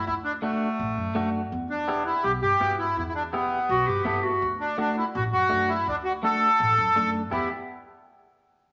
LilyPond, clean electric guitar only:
\new Staff \with { instrumentName = "Clean electric guitar" } { \time 4/4 \key e \minor \tempo 4 = 165 r4 <a d' fis'>8 r4. <a d' fis'>8 r8 | r4 <b e' g'>8 r4. <b e' fis'>8 r8 | r4 <b e' g'>8 r4. <b e' a'>8 r8 | r4 <a d' fis'>8 r4. <a d' fis'>8 r8 |
r4 <a d' fis'>8 r4. <a d' a'>8 r8 | <b e' g'>8 r2. r8 | }